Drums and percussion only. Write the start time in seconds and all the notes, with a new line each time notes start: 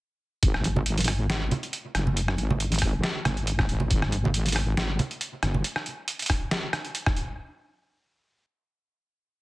0.43 kick, closed hi-hat
0.54 cross-stick
0.64 closed hi-hat, high conga
0.76 low conga
0.86 closed hi-hat
0.98 closed hi-hat, high conga
1.01 closed hi-hat
1.04 cross-stick, closed hi-hat, open hi-hat
1.30 snare, closed hi-hat
1.51 closed hi-hat, low conga
1.63 closed hi-hat
1.73 closed hi-hat
1.95 cross-stick, closed hi-hat
2.07 low conga
2.17 closed hi-hat
2.28 cross-stick
2.38 closed hi-hat, high conga
2.50 low conga
2.60 closed hi-hat
2.72 closed hi-hat, high conga
2.74 closed hi-hat
2.78 kick, cross-stick, closed hi-hat, open hi-hat
3.04 snare, closed hi-hat
3.25 cross-stick, closed hi-hat, low conga
3.37 closed hi-hat
3.47 closed hi-hat
3.59 kick, cross-stick
3.69 closed hi-hat
3.80 low conga
3.91 kick, closed hi-hat
4.02 cross-stick
4.12 closed hi-hat, high conga
4.25 low conga
4.34 closed hi-hat
4.46 closed hi-hat, high conga
4.48 closed hi-hat
4.52 cross-stick, closed hi-hat, open hi-hat
4.77 snare, closed hi-hat
4.99 closed hi-hat, low conga
5.11 closed hi-hat
5.21 closed hi-hat
5.43 cross-stick, closed hi-hat
5.54 low conga
5.64 closed hi-hat
5.76 cross-stick
5.86 closed hi-hat
6.08 closed hi-hat
6.19 closed hi-hat
6.22 closed hi-hat
6.26 kick, cross-stick, closed hi-hat, open hi-hat
6.51 snare, closed hi-hat
6.73 cross-stick, closed hi-hat
6.85 closed hi-hat
6.95 closed hi-hat
7.06 kick, cross-stick
7.17 closed hi-hat